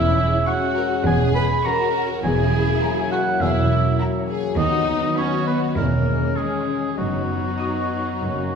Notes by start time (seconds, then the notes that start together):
Already playing: E1 E2 E3 G#3 C#4 E4 G#4 C#5 E5
0.08 C#4
0.18 C#4
0.28 G#4
0.47 C#4 F#4 F#5 C#6
0.67 C#5
0.76 A#4
0.87 G#4
1.05 E1 E2 E3 G#4 G#5
1.25 C#4
1.35 B4 B5
1.45 G#4
1.64 C#4 F#4 A#4 A#5 C#6
1.85 C#5
2.04 G#4
2.23 E1 E2 E3 F#3 A#3 E4 G#4 G#5
2.43 C#4
2.63 A#4
2.82 F#4 A#5
3.01 C#5
3.11 F#4 F#5
3.41 E1 E2 E3 E4 G#4 E5
3.60 C#4
3.72 F#4
3.80 A#4
3.99 E4 F#4 A#5
4.19 C#5
4.29 G#4
4.38 F#4
4.58 D#2 D#3 F#3 B3 D#4 F#4 D#5
4.78 D#4
4.88 D#4
4.97 B4
5.17 C#4 F#4 C#5 B5
5.37 D#5
5.47 B3 B4
5.57 F#4
5.76 E1 E2 E3 G#3 A#3 C#4 E4 A#4
5.96 C#4
6.07 C#4
6.16 C#5
6.36 G#3 C#4 G#4 C#6
6.57 C#5
6.97 F#1 F#2 F#3 B3 D#4 F#4
7.18 B3
7.39 F#4
7.60 D#5 D#6
7.81 B4
8.01 D#5
8.22 F#1 F#2 A#3 C#4
8.44 A#3